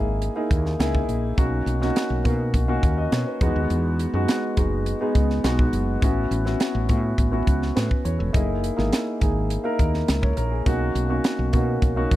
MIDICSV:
0, 0, Header, 1, 4, 480
1, 0, Start_track
1, 0, Key_signature, 5, "major"
1, 0, Tempo, 580271
1, 1142, Time_signature, 4, 2, 24, 8
1, 10059, End_track
2, 0, Start_track
2, 0, Title_t, "Grand piano"
2, 0, Program_c, 0, 0
2, 0, Control_c, 0, 64, 127
2, 0, Note_on_c, 0, 58, 64
2, 0, Note_on_c, 0, 63, 48
2, 0, Note_on_c, 0, 64, 57
2, 0, Note_on_c, 0, 68, 73
2, 257, Note_off_c, 0, 58, 0
2, 259, Note_off_c, 0, 63, 0
2, 261, Note_off_c, 0, 64, 0
2, 262, Note_off_c, 0, 68, 0
2, 295, Note_on_c, 0, 58, 69
2, 297, Note_on_c, 0, 63, 68
2, 301, Note_on_c, 0, 64, 61
2, 305, Note_on_c, 0, 68, 77
2, 617, Note_off_c, 0, 58, 0
2, 619, Note_off_c, 0, 63, 0
2, 620, Note_off_c, 0, 64, 0
2, 623, Note_off_c, 0, 68, 0
2, 655, Note_on_c, 0, 58, 73
2, 660, Note_on_c, 0, 63, 70
2, 665, Note_on_c, 0, 64, 75
2, 665, Note_on_c, 0, 68, 89
2, 1084, Note_off_c, 0, 58, 0
2, 1086, Note_off_c, 0, 63, 0
2, 1089, Note_off_c, 0, 64, 0
2, 1089, Note_off_c, 0, 68, 0
2, 1136, Note_on_c, 0, 58, 75
2, 1139, Note_on_c, 0, 61, 69
2, 1142, Note_on_c, 0, 63, 66
2, 1144, Note_on_c, 0, 66, 83
2, 1152, Control_c, 0, 64, 0
2, 1310, Control_c, 0, 64, 127
2, 1458, Note_off_c, 0, 58, 0
2, 1460, Note_off_c, 0, 61, 0
2, 1461, Note_off_c, 0, 63, 0
2, 1462, Note_off_c, 0, 66, 0
2, 1497, Note_on_c, 0, 58, 71
2, 1500, Note_on_c, 0, 61, 69
2, 1505, Note_on_c, 0, 63, 63
2, 1508, Note_on_c, 0, 66, 79
2, 1818, Note_off_c, 0, 58, 0
2, 1820, Note_off_c, 0, 61, 0
2, 1822, Note_off_c, 0, 63, 0
2, 1824, Note_off_c, 0, 66, 0
2, 1853, Note_on_c, 0, 58, 67
2, 1857, Note_on_c, 0, 61, 56
2, 1862, Note_on_c, 0, 63, 55
2, 1864, Note_on_c, 0, 66, 72
2, 2177, Note_off_c, 0, 58, 0
2, 2178, Note_off_c, 0, 61, 0
2, 2181, Note_off_c, 0, 63, 0
2, 2182, Note_off_c, 0, 66, 0
2, 2218, Note_on_c, 0, 58, 78
2, 2220, Note_on_c, 0, 61, 65
2, 2225, Note_on_c, 0, 63, 60
2, 2227, Note_on_c, 0, 66, 85
2, 2463, Note_on_c, 0, 75, 67
2, 2539, Note_off_c, 0, 58, 0
2, 2540, Note_off_c, 0, 61, 0
2, 2542, Note_off_c, 0, 63, 0
2, 2543, Note_off_c, 0, 66, 0
2, 2576, Note_off_c, 0, 75, 0
2, 2585, Note_on_c, 0, 73, 66
2, 2697, Note_off_c, 0, 73, 0
2, 2707, Note_on_c, 0, 71, 50
2, 2819, Note_on_c, 0, 56, 79
2, 2821, Note_on_c, 0, 59, 82
2, 2827, Note_on_c, 0, 63, 78
2, 2829, Note_on_c, 0, 66, 87
2, 2831, Control_c, 0, 64, 0
2, 2933, Note_off_c, 0, 71, 0
2, 2987, Control_c, 0, 64, 127
2, 3352, Note_off_c, 0, 56, 0
2, 3353, Note_off_c, 0, 59, 0
2, 3356, Note_off_c, 0, 63, 0
2, 3357, Note_off_c, 0, 66, 0
2, 3422, Note_on_c, 0, 56, 71
2, 3425, Note_on_c, 0, 59, 62
2, 3430, Note_on_c, 0, 63, 62
2, 3433, Note_on_c, 0, 66, 80
2, 3741, Note_off_c, 0, 56, 0
2, 3742, Note_off_c, 0, 59, 0
2, 3745, Note_off_c, 0, 63, 0
2, 3747, Note_off_c, 0, 66, 0
2, 3778, Note_on_c, 0, 56, 59
2, 3782, Note_on_c, 0, 59, 50
2, 3785, Note_on_c, 0, 63, 59
2, 3789, Note_on_c, 0, 66, 64
2, 4099, Note_off_c, 0, 56, 0
2, 4101, Note_off_c, 0, 59, 0
2, 4102, Note_off_c, 0, 63, 0
2, 4104, Note_off_c, 0, 66, 0
2, 4142, Note_on_c, 0, 56, 69
2, 4143, Note_on_c, 0, 59, 72
2, 4150, Note_on_c, 0, 63, 74
2, 4153, Note_on_c, 0, 68, 74
2, 4461, Note_off_c, 0, 56, 0
2, 4462, Note_off_c, 0, 59, 0
2, 4465, Note_off_c, 0, 63, 0
2, 4466, Note_off_c, 0, 68, 0
2, 4499, Note_on_c, 0, 56, 81
2, 4503, Note_on_c, 0, 59, 69
2, 4506, Note_on_c, 0, 63, 65
2, 4508, Note_on_c, 0, 66, 84
2, 4926, Note_off_c, 0, 56, 0
2, 4928, Note_off_c, 0, 59, 0
2, 4929, Note_off_c, 0, 63, 0
2, 4930, Note_off_c, 0, 66, 0
2, 4981, Note_on_c, 0, 59, 72
2, 4984, Note_on_c, 0, 61, 68
2, 4989, Note_on_c, 0, 64, 62
2, 4991, Note_on_c, 0, 66, 73
2, 4992, Control_c, 0, 64, 0
2, 5140, Control_c, 0, 64, 127
2, 5300, Note_off_c, 0, 59, 0
2, 5302, Note_off_c, 0, 61, 0
2, 5304, Note_off_c, 0, 64, 0
2, 5305, Note_off_c, 0, 66, 0
2, 5338, Note_on_c, 0, 59, 70
2, 5341, Note_on_c, 0, 61, 59
2, 5343, Note_on_c, 0, 64, 62
2, 5348, Note_on_c, 0, 66, 73
2, 5659, Note_off_c, 0, 59, 0
2, 5661, Note_off_c, 0, 61, 0
2, 5662, Note_off_c, 0, 64, 0
2, 5664, Note_off_c, 0, 66, 0
2, 5697, Note_on_c, 0, 59, 65
2, 5702, Note_on_c, 0, 61, 53
2, 5705, Note_on_c, 0, 64, 60
2, 5707, Note_on_c, 0, 66, 70
2, 6018, Note_off_c, 0, 59, 0
2, 6021, Note_off_c, 0, 61, 0
2, 6022, Note_off_c, 0, 64, 0
2, 6023, Note_off_c, 0, 66, 0
2, 6051, Note_on_c, 0, 59, 64
2, 6055, Note_on_c, 0, 61, 60
2, 6058, Note_on_c, 0, 64, 60
2, 6062, Note_on_c, 0, 66, 74
2, 6376, Note_off_c, 0, 59, 0
2, 6377, Note_off_c, 0, 61, 0
2, 6379, Note_off_c, 0, 64, 0
2, 6381, Note_off_c, 0, 66, 0
2, 6417, Note_on_c, 0, 71, 60
2, 6647, Note_off_c, 0, 71, 0
2, 6658, Note_on_c, 0, 73, 64
2, 6773, Note_on_c, 0, 69, 54
2, 6774, Note_off_c, 0, 73, 0
2, 6890, Note_on_c, 0, 58, 70
2, 6892, Note_on_c, 0, 63, 71
2, 6896, Note_on_c, 0, 64, 70
2, 6899, Note_on_c, 0, 68, 72
2, 6914, Control_c, 0, 64, 0
2, 7005, Note_off_c, 0, 69, 0
2, 7052, Control_c, 0, 64, 127
2, 7215, Note_off_c, 0, 58, 0
2, 7216, Note_off_c, 0, 63, 0
2, 7218, Note_off_c, 0, 64, 0
2, 7220, Note_off_c, 0, 68, 0
2, 7252, Note_on_c, 0, 58, 69
2, 7254, Note_on_c, 0, 63, 58
2, 7257, Note_on_c, 0, 64, 63
2, 7261, Note_on_c, 0, 68, 73
2, 7576, Note_off_c, 0, 58, 0
2, 7577, Note_off_c, 0, 63, 0
2, 7578, Note_off_c, 0, 64, 0
2, 7580, Note_off_c, 0, 68, 0
2, 7617, Note_on_c, 0, 58, 57
2, 7619, Note_on_c, 0, 63, 58
2, 7624, Note_on_c, 0, 64, 50
2, 7626, Note_on_c, 0, 68, 68
2, 7938, Note_off_c, 0, 58, 0
2, 7939, Note_off_c, 0, 63, 0
2, 7942, Note_off_c, 0, 64, 0
2, 7943, Note_off_c, 0, 68, 0
2, 7971, Note_on_c, 0, 58, 74
2, 7973, Note_on_c, 0, 63, 68
2, 7977, Note_on_c, 0, 64, 64
2, 7983, Note_on_c, 0, 70, 83
2, 8295, Note_off_c, 0, 58, 0
2, 8296, Note_off_c, 0, 63, 0
2, 8298, Note_off_c, 0, 64, 0
2, 8301, Note_off_c, 0, 70, 0
2, 8341, Note_on_c, 0, 76, 58
2, 8455, Note_off_c, 0, 76, 0
2, 8457, Note_on_c, 0, 73, 60
2, 8573, Note_off_c, 0, 73, 0
2, 8576, Note_on_c, 0, 70, 69
2, 8693, Note_off_c, 0, 70, 0
2, 8699, Note_on_c, 0, 68, 58
2, 8818, Note_on_c, 0, 58, 71
2, 8819, Note_on_c, 0, 61, 62
2, 8824, Note_on_c, 0, 63, 68
2, 8827, Note_on_c, 0, 66, 87
2, 8833, Control_c, 0, 64, 0
2, 8928, Note_off_c, 0, 68, 0
2, 8999, Control_c, 0, 64, 127
2, 9139, Note_off_c, 0, 58, 0
2, 9139, Note_off_c, 0, 61, 0
2, 9142, Note_off_c, 0, 63, 0
2, 9143, Note_off_c, 0, 66, 0
2, 9172, Note_on_c, 0, 58, 64
2, 9179, Note_on_c, 0, 61, 65
2, 9182, Note_on_c, 0, 63, 63
2, 9184, Note_on_c, 0, 66, 79
2, 9496, Note_off_c, 0, 58, 0
2, 9499, Note_off_c, 0, 61, 0
2, 9501, Note_off_c, 0, 63, 0
2, 9501, Note_off_c, 0, 66, 0
2, 9534, Note_on_c, 0, 58, 63
2, 9537, Note_on_c, 0, 61, 58
2, 9541, Note_on_c, 0, 63, 50
2, 9545, Note_on_c, 0, 66, 70
2, 9857, Note_off_c, 0, 58, 0
2, 9858, Note_off_c, 0, 61, 0
2, 9860, Note_off_c, 0, 63, 0
2, 9862, Note_off_c, 0, 66, 0
2, 9894, Note_on_c, 0, 58, 71
2, 9898, Note_on_c, 0, 61, 65
2, 9900, Note_on_c, 0, 63, 74
2, 9903, Note_on_c, 0, 66, 83
2, 10059, Note_off_c, 0, 58, 0
2, 10059, Note_off_c, 0, 61, 0
2, 10059, Note_off_c, 0, 63, 0
2, 10059, Note_off_c, 0, 66, 0
2, 10059, End_track
3, 0, Start_track
3, 0, Title_t, "Fretless electric bass"
3, 0, Program_c, 1, 35
3, 0, Note_on_c, 1, 32, 71
3, 232, Note_off_c, 1, 32, 0
3, 419, Note_on_c, 1, 39, 80
3, 613, Note_off_c, 1, 39, 0
3, 658, Note_on_c, 1, 37, 84
3, 853, Note_off_c, 1, 37, 0
3, 897, Note_on_c, 1, 34, 71
3, 1092, Note_off_c, 1, 34, 0
3, 1137, Note_on_c, 1, 35, 83
3, 1332, Note_off_c, 1, 35, 0
3, 1375, Note_on_c, 1, 35, 90
3, 1571, Note_off_c, 1, 35, 0
3, 1738, Note_on_c, 1, 35, 76
3, 1836, Note_off_c, 1, 35, 0
3, 1864, Note_on_c, 1, 47, 85
3, 2099, Note_on_c, 1, 35, 87
3, 2111, Note_off_c, 1, 47, 0
3, 2293, Note_off_c, 1, 35, 0
3, 2341, Note_on_c, 1, 39, 74
3, 2534, Note_off_c, 1, 39, 0
3, 2582, Note_on_c, 1, 47, 83
3, 2678, Note_off_c, 1, 47, 0
3, 2818, Note_on_c, 1, 40, 68
3, 2916, Note_off_c, 1, 40, 0
3, 2943, Note_on_c, 1, 39, 76
3, 3039, Note_off_c, 1, 39, 0
3, 3063, Note_on_c, 1, 40, 87
3, 3352, Note_off_c, 1, 40, 0
3, 3420, Note_on_c, 1, 42, 75
3, 3517, Note_off_c, 1, 42, 0
3, 3783, Note_on_c, 1, 30, 79
3, 4072, Note_off_c, 1, 30, 0
3, 4261, Note_on_c, 1, 37, 71
3, 4454, Note_off_c, 1, 37, 0
3, 4501, Note_on_c, 1, 35, 80
3, 4694, Note_off_c, 1, 35, 0
3, 4738, Note_on_c, 1, 30, 75
3, 4932, Note_off_c, 1, 30, 0
3, 4983, Note_on_c, 1, 33, 97
3, 5175, Note_off_c, 1, 33, 0
3, 5219, Note_on_c, 1, 33, 87
3, 5413, Note_off_c, 1, 33, 0
3, 5581, Note_on_c, 1, 33, 85
3, 5678, Note_off_c, 1, 33, 0
3, 5703, Note_on_c, 1, 45, 85
3, 5895, Note_off_c, 1, 45, 0
3, 5941, Note_on_c, 1, 33, 81
3, 6134, Note_off_c, 1, 33, 0
3, 6179, Note_on_c, 1, 37, 72
3, 6373, Note_off_c, 1, 37, 0
3, 6423, Note_on_c, 1, 45, 89
3, 6519, Note_off_c, 1, 45, 0
3, 6659, Note_on_c, 1, 40, 66
3, 6757, Note_off_c, 1, 40, 0
3, 6783, Note_on_c, 1, 28, 86
3, 6879, Note_off_c, 1, 28, 0
3, 6900, Note_on_c, 1, 30, 87
3, 7190, Note_off_c, 1, 30, 0
3, 7266, Note_on_c, 1, 32, 77
3, 7361, Note_off_c, 1, 32, 0
3, 7622, Note_on_c, 1, 32, 75
3, 7911, Note_off_c, 1, 32, 0
3, 8101, Note_on_c, 1, 39, 60
3, 8294, Note_off_c, 1, 39, 0
3, 8346, Note_on_c, 1, 37, 77
3, 8537, Note_off_c, 1, 37, 0
3, 8581, Note_on_c, 1, 34, 75
3, 8774, Note_off_c, 1, 34, 0
3, 8820, Note_on_c, 1, 35, 92
3, 9013, Note_off_c, 1, 35, 0
3, 9059, Note_on_c, 1, 35, 96
3, 9253, Note_off_c, 1, 35, 0
3, 9420, Note_on_c, 1, 35, 84
3, 9517, Note_off_c, 1, 35, 0
3, 9542, Note_on_c, 1, 47, 88
3, 9734, Note_off_c, 1, 47, 0
3, 9777, Note_on_c, 1, 35, 84
3, 9971, Note_off_c, 1, 35, 0
3, 10019, Note_on_c, 1, 39, 69
3, 10059, Note_off_c, 1, 39, 0
3, 10059, End_track
4, 0, Start_track
4, 0, Title_t, "Drums"
4, 180, Note_on_c, 9, 42, 68
4, 263, Note_off_c, 9, 42, 0
4, 420, Note_on_c, 9, 36, 70
4, 421, Note_on_c, 9, 42, 75
4, 503, Note_off_c, 9, 36, 0
4, 504, Note_off_c, 9, 42, 0
4, 544, Note_on_c, 9, 38, 30
4, 627, Note_off_c, 9, 38, 0
4, 664, Note_on_c, 9, 42, 91
4, 665, Note_on_c, 9, 38, 95
4, 747, Note_off_c, 9, 42, 0
4, 748, Note_off_c, 9, 38, 0
4, 783, Note_on_c, 9, 36, 75
4, 865, Note_off_c, 9, 36, 0
4, 901, Note_on_c, 9, 42, 65
4, 984, Note_off_c, 9, 42, 0
4, 1140, Note_on_c, 9, 36, 92
4, 1141, Note_on_c, 9, 42, 72
4, 1223, Note_off_c, 9, 36, 0
4, 1223, Note_off_c, 9, 42, 0
4, 1384, Note_on_c, 9, 42, 78
4, 1467, Note_off_c, 9, 42, 0
4, 1505, Note_on_c, 9, 38, 39
4, 1588, Note_off_c, 9, 38, 0
4, 1622, Note_on_c, 9, 42, 84
4, 1627, Note_on_c, 9, 38, 97
4, 1705, Note_off_c, 9, 42, 0
4, 1710, Note_off_c, 9, 38, 0
4, 1862, Note_on_c, 9, 42, 78
4, 1863, Note_on_c, 9, 36, 82
4, 1945, Note_off_c, 9, 42, 0
4, 1946, Note_off_c, 9, 36, 0
4, 2100, Note_on_c, 9, 36, 69
4, 2101, Note_on_c, 9, 42, 69
4, 2183, Note_off_c, 9, 36, 0
4, 2184, Note_off_c, 9, 42, 0
4, 2341, Note_on_c, 9, 36, 75
4, 2343, Note_on_c, 9, 42, 73
4, 2424, Note_off_c, 9, 36, 0
4, 2426, Note_off_c, 9, 42, 0
4, 2584, Note_on_c, 9, 42, 83
4, 2585, Note_on_c, 9, 38, 94
4, 2666, Note_off_c, 9, 42, 0
4, 2668, Note_off_c, 9, 38, 0
4, 2820, Note_on_c, 9, 42, 59
4, 2821, Note_on_c, 9, 36, 94
4, 2903, Note_off_c, 9, 42, 0
4, 2904, Note_off_c, 9, 36, 0
4, 3062, Note_on_c, 9, 42, 73
4, 3145, Note_off_c, 9, 42, 0
4, 3305, Note_on_c, 9, 42, 76
4, 3387, Note_off_c, 9, 42, 0
4, 3544, Note_on_c, 9, 42, 96
4, 3549, Note_on_c, 9, 38, 98
4, 3627, Note_off_c, 9, 42, 0
4, 3632, Note_off_c, 9, 38, 0
4, 3780, Note_on_c, 9, 42, 76
4, 3783, Note_on_c, 9, 36, 80
4, 3863, Note_off_c, 9, 42, 0
4, 3866, Note_off_c, 9, 36, 0
4, 4022, Note_on_c, 9, 42, 73
4, 4105, Note_off_c, 9, 42, 0
4, 4261, Note_on_c, 9, 36, 76
4, 4261, Note_on_c, 9, 42, 74
4, 4344, Note_off_c, 9, 36, 0
4, 4344, Note_off_c, 9, 42, 0
4, 4384, Note_on_c, 9, 38, 28
4, 4467, Note_off_c, 9, 38, 0
4, 4502, Note_on_c, 9, 42, 90
4, 4503, Note_on_c, 9, 38, 88
4, 4584, Note_off_c, 9, 42, 0
4, 4586, Note_off_c, 9, 38, 0
4, 4624, Note_on_c, 9, 36, 73
4, 4707, Note_off_c, 9, 36, 0
4, 4740, Note_on_c, 9, 42, 64
4, 4823, Note_off_c, 9, 42, 0
4, 4982, Note_on_c, 9, 36, 89
4, 4982, Note_on_c, 9, 42, 79
4, 5065, Note_off_c, 9, 36, 0
4, 5065, Note_off_c, 9, 42, 0
4, 5224, Note_on_c, 9, 42, 74
4, 5307, Note_off_c, 9, 42, 0
4, 5345, Note_on_c, 9, 38, 39
4, 5428, Note_off_c, 9, 38, 0
4, 5461, Note_on_c, 9, 42, 85
4, 5466, Note_on_c, 9, 38, 98
4, 5543, Note_off_c, 9, 42, 0
4, 5548, Note_off_c, 9, 38, 0
4, 5699, Note_on_c, 9, 42, 76
4, 5703, Note_on_c, 9, 36, 74
4, 5782, Note_off_c, 9, 42, 0
4, 5786, Note_off_c, 9, 36, 0
4, 5941, Note_on_c, 9, 36, 74
4, 5943, Note_on_c, 9, 42, 69
4, 6023, Note_off_c, 9, 36, 0
4, 6025, Note_off_c, 9, 42, 0
4, 6182, Note_on_c, 9, 36, 66
4, 6182, Note_on_c, 9, 42, 75
4, 6264, Note_off_c, 9, 36, 0
4, 6264, Note_off_c, 9, 42, 0
4, 6305, Note_on_c, 9, 38, 34
4, 6388, Note_off_c, 9, 38, 0
4, 6424, Note_on_c, 9, 42, 83
4, 6426, Note_on_c, 9, 38, 95
4, 6507, Note_off_c, 9, 42, 0
4, 6509, Note_off_c, 9, 38, 0
4, 6543, Note_on_c, 9, 36, 76
4, 6626, Note_off_c, 9, 36, 0
4, 6661, Note_on_c, 9, 42, 66
4, 6744, Note_off_c, 9, 42, 0
4, 6902, Note_on_c, 9, 36, 98
4, 6902, Note_on_c, 9, 42, 78
4, 6985, Note_off_c, 9, 36, 0
4, 6985, Note_off_c, 9, 42, 0
4, 7145, Note_on_c, 9, 42, 70
4, 7228, Note_off_c, 9, 42, 0
4, 7268, Note_on_c, 9, 38, 40
4, 7351, Note_off_c, 9, 38, 0
4, 7383, Note_on_c, 9, 42, 96
4, 7388, Note_on_c, 9, 38, 102
4, 7466, Note_off_c, 9, 42, 0
4, 7471, Note_off_c, 9, 38, 0
4, 7621, Note_on_c, 9, 42, 74
4, 7623, Note_on_c, 9, 36, 73
4, 7704, Note_off_c, 9, 42, 0
4, 7706, Note_off_c, 9, 36, 0
4, 7861, Note_on_c, 9, 42, 77
4, 7944, Note_off_c, 9, 42, 0
4, 8101, Note_on_c, 9, 36, 67
4, 8101, Note_on_c, 9, 42, 79
4, 8183, Note_off_c, 9, 36, 0
4, 8184, Note_off_c, 9, 42, 0
4, 8222, Note_on_c, 9, 38, 31
4, 8305, Note_off_c, 9, 38, 0
4, 8341, Note_on_c, 9, 42, 92
4, 8343, Note_on_c, 9, 38, 95
4, 8424, Note_off_c, 9, 42, 0
4, 8426, Note_off_c, 9, 38, 0
4, 8462, Note_on_c, 9, 36, 83
4, 8545, Note_off_c, 9, 36, 0
4, 8578, Note_on_c, 9, 42, 65
4, 8660, Note_off_c, 9, 42, 0
4, 8820, Note_on_c, 9, 42, 83
4, 8821, Note_on_c, 9, 36, 97
4, 8903, Note_off_c, 9, 36, 0
4, 8903, Note_off_c, 9, 42, 0
4, 9063, Note_on_c, 9, 42, 73
4, 9146, Note_off_c, 9, 42, 0
4, 9300, Note_on_c, 9, 42, 88
4, 9305, Note_on_c, 9, 38, 108
4, 9382, Note_off_c, 9, 42, 0
4, 9387, Note_off_c, 9, 38, 0
4, 9537, Note_on_c, 9, 42, 79
4, 9542, Note_on_c, 9, 36, 76
4, 9620, Note_off_c, 9, 42, 0
4, 9625, Note_off_c, 9, 36, 0
4, 9778, Note_on_c, 9, 42, 71
4, 9779, Note_on_c, 9, 36, 79
4, 9861, Note_off_c, 9, 42, 0
4, 9862, Note_off_c, 9, 36, 0
4, 10021, Note_on_c, 9, 36, 80
4, 10021, Note_on_c, 9, 42, 72
4, 10059, Note_off_c, 9, 36, 0
4, 10059, Note_off_c, 9, 42, 0
4, 10059, End_track
0, 0, End_of_file